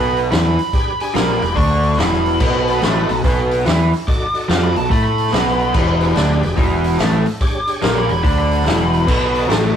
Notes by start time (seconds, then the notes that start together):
Already playing: B1 B2 B3 B5
0.17 open hi-hat
0.31 E2 E3 E4 B5, snare, open hi-hat
0.59 open hi-hat
0.73 D4 G4 G#4 B4, kick, open hi-hat
1.00 D4 G4 G#4 B4 G#5, open hi-hat
1.14 A#1 A#2 A#3 B5, snare, open hi-hat
1.41 E1 E2, open hi-hat
1.56 D2 D3 D4 C#6, kick, open hi-hat
1.83 open hi-hat
1.93 snare
1.98 E1 E2 E3 B5, snare, open hi-hat
2.13 snare
2.26 open hi-hat
2.40 B1 B2 B3 D#4 F#4 A4 D5, kick, crash
2.68 D#4 F#4 A4 B4, open hi-hat
2.82 A1 A2 A3, snare, open hi-hat
3.09 B1 B2, open hi-hat
3.24 B1 B2 B3, kick, open hi-hat
3.51 open hi-hat
3.65 E2 E3 E4, snare, open hi-hat
3.93 open hi-hat
4.07 D#4 F#4 A4 D5 D6, kick, open hi-hat
4.34 D#4 F#4 A4 D5, open hi-hat
4.49 F2 F3 F4 D6, snare, open hi-hat
4.63 B5
4.75 B1 B2 A5, open hi-hat
4.90 A2 A3 A4 B5, kick, open hi-hat
5.04 B5
5.18 open hi-hat
5.27 snare
5.32 B1 B2 B3, snare, open hi-hat
5.48 snare
5.59 open hi-hat
5.73 E1 E2 E3 D4 G4 G#4 B4, kick, crash
6.00 D4 G4 G#4 B4, open hi-hat
6.14 D2 D3 D4, snare, open hi-hat
6.42 E1 E2, open hi-hat
6.56 E1 E2 E3, kick, open hi-hat
6.84 open hi-hat
6.93 snare
6.98 A1 A2 A3, snare, open hi-hat
7.14 snare
7.26 open hi-hat
7.41 D4 G4 G#4 C#5 D6, kick, open hi-hat
7.67 D4 G4 G#4 C#5, open hi-hat
7.82 A#1 A#2 A#3 D6, snare, open hi-hat
7.98 B5
8.09 E1 E2 B5, open hi-hat
8.23 D2 D3 D4 B5, kick, open hi-hat
8.39 B5
8.51 open hi-hat
8.60 snare
8.65 E1 E2 E3, snare, open hi-hat
8.93 open hi-hat
9.07 B1 B2 B3 D#4 F#4 A4 D5, kick, crash
9.33 D#4 F#4 A4 D5, open hi-hat
9.48 A1 A2 A3, snare, open hi-hat